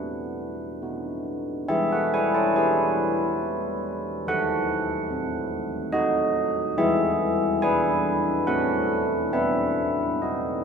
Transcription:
Already playing: E4 F#4 B4 F#5
0.82 B3 D#4 F#4
1.69 E3 G#4 E5
1.92 A4 F#5
2.14 B4 G#5
2.35 C#5 A5
2.55 E4 B4 G#5
4.27 D#3 A4 F#5
5.10 A3
5.92 F#4 D#5
6.78 E3 G#4 E5
7.62 B3 G#4 B4 G#5
8.47 A3 C#4 F#4 A4 F#5
9.32 B3 B4 E5
10.21 B3 F#4 D#5

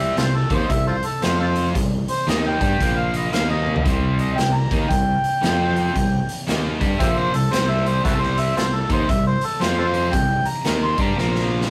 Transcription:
Already playing: C2 C3 G3 C4
0.00 E5
0.17 C2 C3 G3 F4 A4 C5, snare, closed hi-hat
0.35 A4
0.50 D#2 D#3 A#3 D#4, kick, closed hi-hat
0.54 C5
0.70 C2 C3 G3 E5, kick, closed hi-hat
0.87 F4 A4 C5
1.03 A4, closed hi-hat
1.22 F2 F3 C4 F4 C5, snare, closed hi-hat
1.39 F4 A4 C5
1.55 closed hi-hat
1.75 C2 C3 G3, kick, closed hi-hat
2.08 C5, closed hi-hat
2.27 D#2 D#3 A#3 D#4 D#5, snare, closed hi-hat
2.47 G5
2.60 G2 G3 D4 G4, kick, closed hi-hat
2.80 A#1 A#2 F3 A#3, kick, closed hi-hat
2.99 F5
3.14 D#5, closed hi-hat
3.32 D#2 D#3 A#3 D#4 F5, snare, closed hi-hat
3.50 D#5
3.66 high tom
3.76 floor tom
3.85 C2 C3 G3 C4, kick, closed hi-hat
4.19 D#5, closed hi-hat
4.37 C2 C3 G3 G5, snare, closed hi-hat
4.54 A#5
4.71 D#2 D#3 A#3 D#4, kick, closed hi-hat
4.90 C2 C3 G3 G5, kick, closed hi-hat
5.24 closed hi-hat
5.42 F2 F3 C4 F4, snare, closed hi-hat
5.76 closed hi-hat
5.95 C2 C3 G3, kick, closed hi-hat
6.29 closed hi-hat
6.47 D#2 D#3 A#3 D#4, snare, closed hi-hat
6.79 G2 G3 D4 G4, kick, closed hi-hat
6.99 A#1 A#2 F3 A#3 G4 C5 E5, kick, closed hi-hat
7.18 C5
7.32 C2 C3 G3 A4, closed hi-hat
7.51 C2 C3 G3 C4 C5, snare, closed hi-hat
7.70 E5
7.86 C5, closed hi-hat
8.04 C2 C3 G3 C4 E4 F#4 A4, kick, closed hi-hat
8.21 C5, snare
8.38 E5, closed hi-hat
8.56 C2 C3 G3 F4 A4 C5, snare, closed hi-hat
8.74 A4
8.89 D#2 D#3 A#3 D#4 C5, kick, closed hi-hat
9.09 C2 C3 G3 E5, kick, closed hi-hat
9.27 C5
9.41 A4, closed hi-hat
9.60 F2 F3 C4 F4 C5, snare, closed hi-hat
9.79 F4 A4 C5
9.94 closed hi-hat
10.13 C2 C3 G3 G5, kick, closed hi-hat
10.45 A#5, closed hi-hat
10.65 D#2 D#3 A#3 D#4, snare, closed hi-hat
10.83 C6
10.98 G2 G3 D4 G4 A#5, kick, closed hi-hat
11.17 A#1 A#2 F3 A#3, snare
11.35 snare
11.61 snare

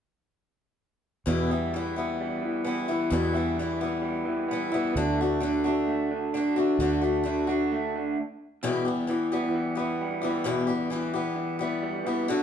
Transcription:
1.26 E2 B2 E3 G3 B3 E4
1.51 E3 G3 B3 E4
1.74 E3 G3 B3 E4
1.96 E3 G3 B3 E4
2.21 G3
2.42 E3
2.64 E3 G3 B3 E4
2.88 E3 G3 B3 E4
3.10 E2 B2 E3 G3 B3 E4
3.34 E3 G3 B3 E4
3.59 E3 G3 B3 E4
3.81 E3 G3 B3 E4
4.02 G3
4.25 E3
4.48 E3 G3 B3
4.53 B3 E4
4.72 E3 G3 B3 E4
4.96 D2 D3 A3 D4 F#4
5.18 A3 F#4
5.22 A3 D4
5.40 D3 A3 D4 F#4
5.64 A3 D4 F#4
5.88 A3
6.11 D3
6.34 D3 A3 D4 F#4
6.56 D3 A3 D4 F#4
6.79 D2 D3 A3 D4 F#4
7.02 A3 D4 F#4
7.24 D3 A3 D4 F#4
7.47 A3 D4 F#4
7.72 A3
7.96 D3
8.63 E2 B2 E3 G3 B3 G4
8.85 E3 G3 B3 G4
9.07 E3 G3 B3 G4
9.32 E3 G3 B3 G4
9.54 E3
9.75 E3 G3 B3 G4
10.01 G3
10.21 E3 G3 B3 G4
10.44 E2 B2 E3 G3 B3 G4
10.67 E3 G3 B3 G4
10.90 E3 G3 B3 G4
11.14 E3 G3 B3 G4
11.36 E3
11.59 E3 G3 B3 G4
11.83 G3
12.06 E3 G3 B3 G4
12.28 D3 A3 D4 F#4

